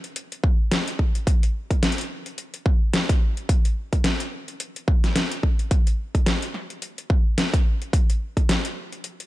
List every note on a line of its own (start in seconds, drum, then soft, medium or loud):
0.04 closed hi-hat soft
0.16 closed hi-hat medium
0.32 closed hi-hat medium
0.44 kick loud
0.72 snare loud
0.72 closed hi-hat medium
0.88 closed hi-hat medium
0.99 kick medium
1.15 closed hi-hat soft
1.27 kick loud
1.27 closed hi-hat medium
1.43 closed hi-hat medium
1.71 kick medium
1.71 closed hi-hat soft
1.83 snare loud
1.83 closed hi-hat medium
1.92 closed hi-hat medium
1.98 closed hi-hat medium
2.01 closed hi-hat medium
2.26 closed hi-hat soft
2.38 closed hi-hat medium
2.54 closed hi-hat medium
2.66 kick loud
2.94 snare loud
2.94 closed hi-hat medium
3.09 kick loud
3.09 closed hi-hat medium
3.37 closed hi-hat soft
3.49 kick loud
3.49 closed hi-hat medium
3.65 closed hi-hat medium
3.93 kick medium
3.93 closed hi-hat soft
4.04 snare loud
4.04 closed hi-hat medium
4.20 closed hi-hat medium
4.48 closed hi-hat soft
4.60 closed hi-hat medium
4.76 closed hi-hat soft
4.88 kick loud
5.04 snare soft
5.04 closed hi-hat soft
5.16 snare loud
5.16 closed hi-hat medium
5.32 closed hi-hat medium
5.43 kick medium
5.59 closed hi-hat soft
5.71 kick loud
5.71 closed hi-hat medium
5.87 closed hi-hat soft
6.15 kick medium
6.15 closed hi-hat soft
6.26 snare loud
6.26 closed hi-hat medium
6.42 closed hi-hat medium
6.54 snare soft
6.70 closed hi-hat soft
6.82 closed hi-hat medium
6.98 closed hi-hat soft
7.10 kick loud
7.38 snare loud
7.38 closed hi-hat medium
7.54 kick loud
7.54 closed hi-hat medium
7.82 closed hi-hat soft
7.93 kick loud
7.93 closed hi-hat medium
8.10 closed hi-hat soft
8.37 kick medium
8.37 closed hi-hat soft
8.49 snare loud
8.49 closed hi-hat medium
8.65 closed hi-hat medium
8.92 closed hi-hat soft
9.04 closed hi-hat medium
9.20 closed hi-hat soft